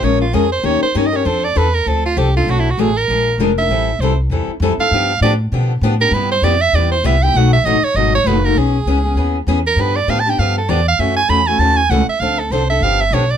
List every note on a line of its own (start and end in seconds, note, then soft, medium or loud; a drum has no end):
0.02 0.33 A#1 medium
0.02 0.22 F3 medium
0.02 0.22 G#3 medium
0.02 0.23 C#4 medium
0.02 0.23 F4 medium
0.02 0.23 A#4 medium
0.02 0.21 C#5 medium
0.21 0.36 F4 medium
0.33 0.63 F2 medium
0.33 0.44 F3 medium
0.33 0.44 G#3 medium
0.33 0.44 C#4 medium
0.33 0.44 F4 medium
0.33 0.52 G#4 medium
0.33 0.44 A#4 medium
0.52 0.66 C5 medium
0.63 0.80 D#2 medium
0.63 0.83 D#3 medium
0.63 0.83 A#3 medium
0.63 0.83 C#4 medium
0.63 0.83 G4 medium
0.63 0.84 A#4 medium
0.63 0.82 C#5 medium
0.82 0.99 C5 medium
0.82 muted upright bass stroke soft
0.95 1.25 G2 medium
0.95 1.05 D#3 loud
0.95 1.05 A#3 medium
0.95 1.06 C#4 medium
0.95 1.06 G4 medium
0.95 1.06 A#4 loud
0.95 1.08 C#5 medium
1.06 1.18 D#5 medium
1.12 1.25 C#4 soft
1.12 1.25 G4 medium
1.12 1.25 A#4 medium
1.16 1.27 C#5 medium
1.25 1.55 F2 medium
1.25 1.44 F3 medium
1.25 1.45 C4 medium
1.25 1.45 D4 medium
1.25 1.45 A4 medium
1.25 1.46 C5 medium
1.44 1.59 D5 medium
1.56 1.86 E2 medium
1.56 1.66 F3 medium
1.56 1.66 C4 medium
1.56 1.67 D4 medium
1.56 1.67 A4 medium
1.56 1.76 B4 medium
1.74 1.89 A#4 medium
1.86 2.16 D2 medium
1.86 2.06 F3 medium
1.86 2.06 C4 medium
1.86 2.06 D4 medium
1.86 2.06 A4 medium
1.86 2.05 A4 medium
2.06 2.20 F4 medium
2.17 2.46 C2 medium
2.17 2.27 F3 medium
2.17 2.27 C4 medium
2.17 2.28 D4 medium
2.17 2.35 G4 medium
2.17 2.28 A4 loud
2.36 2.48 C4 soft
2.36 2.48 D4 medium
2.36 2.52 F4 medium
2.36 2.47 A4 medium
2.46 2.77 B1 medium
2.46 2.67 B2 medium
2.46 2.67 F#3 medium
2.46 2.67 A3 medium
2.46 2.67 D4 medium
2.46 2.67 F#4 medium
2.46 2.61 F#4 medium
2.60 2.72 E4 medium
2.70 2.82 F#4 medium
2.77 3.07 A1 medium
2.77 2.89 B2 medium
2.77 2.89 F#3 medium
2.77 2.89 A3 medium
2.77 2.89 D4 medium
2.77 2.89 F#4 medium
2.77 2.99 G#4 medium
2.97 3.40 A#4 loud
3.08 3.37 A#1 medium
3.08 3.28 F3 medium
3.08 3.28 G#3 medium
3.08 3.28 D4 medium
3.08 3.29 F4 medium
3.08 3.29 A#4 medium
3.38 3.68 F1 medium
3.38 3.50 F3 medium
3.38 3.50 G#3 loud
3.38 3.50 D4 loud
3.38 3.50 F4 medium
3.38 3.50 A#4 loud
3.58 3.70 D4 soft
3.58 3.70 F4 medium
3.58 3.69 A#4 medium
3.58 4.02 E5 medium
3.69 3.98 A1 medium
3.69 3.89 E3 medium
3.69 3.89 G3 medium
3.69 3.89 C4 medium
3.69 3.89 E4 medium
3.69 3.89 A4 medium
3.99 4.29 C2 medium
3.99 4.11 E3 medium
3.99 4.11 G3 medium
3.99 4.11 C4 medium
3.99 4.12 E4 medium
3.99 4.12 A4 medium
3.99 4.18 C5 medium
4.30 4.46 E2 medium
4.30 4.50 E3 medium
4.30 4.50 G3 medium
4.30 4.50 C4 medium
4.30 4.50 E4 medium
4.30 4.50 A4 medium
4.48 muted upright bass stroke soft
4.60 4.77 F2 loud
4.60 4.72 E3 medium
4.60 4.72 G3 medium
4.60 4.72 C4 loud
4.60 4.72 E4 loud
4.60 4.72 A4 loud
4.77 4.92 C4 medium
4.77 4.92 E4 medium
4.77 4.91 A4 medium
4.77 5.20 F5 loud
4.77 muted upright bass stroke soft
4.91 5.20 G2 medium
4.91 5.11 D3 medium
4.91 5.11 F3 medium
4.91 5.11 B3 medium
4.91 5.11 D4 medium
4.91 5.12 G4 medium
5.21 5.51 A2 medium
5.21 5.33 D3 medium
5.21 5.33 F3 loud
5.21 5.33 B3 medium
5.21 5.33 D4 loud
5.21 5.33 G4 loud
5.21 5.33 D5 medium
5.52 5.81 B2 medium
5.52 5.71 D3 medium
5.52 5.72 F3 medium
5.52 5.72 B3 medium
5.52 5.72 D4 medium
5.52 5.72 G4 medium
5.81 6.11 A2 medium
5.81 5.93 D3 medium
5.81 5.93 F3 medium
5.81 5.93 B3 loud
5.81 5.94 D4 loud
5.81 5.94 G4 loud
6.00 6.13 B3 medium
6.00 6.13 D4 medium
6.00 6.12 G4 medium
6.00 6.15 A#4 medium
6.11 6.42 G2 loud
6.11 6.32 C3 medium
6.11 6.33 G3 medium
6.11 6.33 B3 medium
6.11 6.33 E4 medium
6.11 6.33 G4 medium
6.11 6.31 B4 medium
6.32 6.45 C5 loud
6.42 6.72 F2 medium
6.42 6.54 C3 medium
6.42 6.54 G3 medium
6.42 6.54 B3 loud
6.42 6.54 E4 loud
6.42 6.54 G4 loud
6.42 6.63 D5 loud
6.61 6.77 E5 loud
6.73 7.03 E2 medium
6.73 6.93 C3 medium
6.73 6.93 G3 medium
6.73 6.93 B3 medium
6.73 6.93 E4 medium
6.73 6.93 G4 medium
6.73 6.91 D5 medium
6.92 7.08 C5 loud
7.04 7.33 C2 medium
7.04 7.15 C3 medium
7.04 7.15 G3 loud
7.04 7.15 B3 loud
7.04 7.15 E4 loud
7.04 7.15 G4 loud
7.04 7.25 E5 medium
7.23 7.36 B3 soft
7.23 7.35 E4 medium
7.23 7.35 G4 medium
7.23 7.39 G5 loud
7.34 7.63 B1 medium
7.34 7.54 B2 medium
7.34 7.54 F#3 medium
7.34 7.55 A3 medium
7.34 7.55 D#4 medium
7.34 7.55 F#4 medium
7.34 7.53 F#5 medium
7.53 7.67 E5 loud
7.64 7.81 A1 medium
7.64 7.76 B2 medium
7.64 7.76 F#3 medium
7.64 7.76 A3 medium
7.64 7.76 D#4 loud
7.64 7.76 F#4 loud
7.64 7.86 D#5 loud
7.81 7.98 C#5 medium
7.81 muted upright bass stroke soft
7.94 8.23 G#1 medium
7.94 8.15 B2 medium
7.94 8.15 F#3 medium
7.94 8.15 A3 medium
7.94 8.15 D#4 medium
7.94 8.15 F#4 medium
7.94 8.14 D#5 loud
8.15 8.28 C#5 loud
8.24 8.54 F#1 loud
8.24 8.36 B2 medium
8.24 8.37 F#3 medium
8.24 8.37 A3 loud
8.24 8.37 D#4 medium
8.24 8.37 F#4 loud
8.24 8.46 B4 medium
8.45 8.57 A3 medium
8.45 8.56 D#4 medium
8.45 8.56 F#4 medium
8.45 8.59 A#4 medium
8.55 8.85 B1 medium
8.55 8.76 E3 medium
8.55 8.76 B3 medium
8.55 8.76 C#4 medium
8.55 8.76 G#4 medium
8.55 9.48 G#4 medium
8.86 9.14 C#2 medium
8.86 8.97 E3 medium
8.86 8.97 B3 medium
8.86 8.97 C#4 medium
8.86 8.98 G#4 medium
9.04 9.16 B3 soft
9.04 9.16 C#4 soft
9.04 9.16 G#4 medium
9.15 9.45 D#2 medium
9.15 9.36 E3 medium
9.15 9.36 B3 medium
9.15 9.36 C#4 medium
9.15 9.37 G#4 medium
9.47 9.76 E2 medium
9.47 9.58 E3 medium
9.47 9.58 B3 loud
9.47 9.58 C#4 loud
9.47 9.58 G#4 loud
9.67 9.82 A#4 medium
9.76 10.06 G2 medium
9.76 9.97 D3 medium
9.76 9.97 F3 medium
9.76 9.97 B3 medium
9.76 9.97 D4 medium
9.76 9.97 G4 medium
9.80 9.98 B4 medium
9.96 10.12 D5 medium
10.08 10.37 A2 medium
10.08 10.18 D3 medium
10.08 10.18 F3 medium
10.08 10.18 B3 medium
10.08 10.19 D4 medium
10.08 10.19 G4 loud
10.08 10.21 F5 medium
10.20 10.31 A5 medium
10.26 10.38 B3 soft
10.26 10.39 D4 medium
10.26 10.38 G4 medium
10.26 10.41 G5 medium
10.38 10.68 G2 medium
10.38 10.58 D3 medium
10.38 10.58 F3 medium
10.38 10.58 B3 medium
10.38 10.59 D4 medium
10.38 10.58 G4 medium
10.38 10.56 F5 medium
10.58 10.71 A4 medium
10.69 10.98 E2 medium
10.69 10.79 D3 medium
10.69 10.79 F3 medium
10.69 10.80 B3 medium
10.69 10.80 D4 loud
10.69 10.80 G4 loud
10.69 10.87 D5 medium
10.88 11.02 F5 loud
10.99 11.28 F#2 medium
10.99 11.18 C#3 medium
10.99 11.18 E3 medium
10.99 11.18 A3 medium
10.99 11.19 C#4 medium
10.99 11.19 F#4 medium
10.99 11.16 E5 medium
11.17 11.31 G#5 loud
11.28 11.58 E2 medium
11.28 11.39 C#3 medium
11.28 11.40 E3 medium
11.28 11.40 A3 medium
11.28 11.40 C#4 loud
11.28 11.40 F#4 medium
11.28 11.49 B5 loud
11.47 11.59 A3 medium
11.47 11.60 C#4 soft
11.47 11.59 F#4 medium
11.47 11.61 G#5 medium
11.59 11.89 D#2 medium
11.59 11.79 C#3 medium
11.59 11.79 E3 medium
11.59 11.79 A3 medium
11.59 11.79 C#4 medium
11.59 11.79 F#4 medium
11.59 11.78 A5 loud
11.76 11.92 G#5 loud
11.89 12.06 C#2 medium
11.89 12.01 C#3 medium
11.89 12.01 E3 loud
11.89 12.01 A3 medium
11.89 12.01 C#4 medium
11.89 12.01 F#4 loud
11.89 12.08 F#5 medium
12.09 12.22 E5 medium
12.20 12.50 D2 medium
12.20 12.40 D3 medium
12.20 12.40 F3 medium
12.20 12.40 C4 medium
12.20 12.40 D4 medium
12.20 12.40 A4 medium
12.20 12.41 F5 loud
12.39 12.53 A4 medium
12.50 12.80 C2 medium
12.50 12.62 D3 medium
12.50 12.62 F3 medium
12.50 12.62 C4 medium
12.50 12.62 D4 medium
12.50 12.62 A4 loud
12.50 12.69 C5 medium
12.70 12.82 C4 soft
12.70 12.82 D4 medium
12.70 12.81 A4 medium
12.70 12.85 E5 medium
12.80 13.10 G1 medium
12.80 13.01 D3 medium
12.80 13.01 F3 medium
12.80 13.01 B3 medium
12.80 13.01 D4 medium
12.80 13.02 G4 medium
12.80 13.03 F5 loud
13.01 13.15 E5 medium
13.11 13.37 B1 medium
13.11 13.22 D3 medium
13.11 13.23 F3 medium
13.11 13.23 B3 loud
13.11 13.23 D4 loud
13.11 13.23 G4 medium
13.11 13.33 C#5 medium
13.31 13.37 D5 medium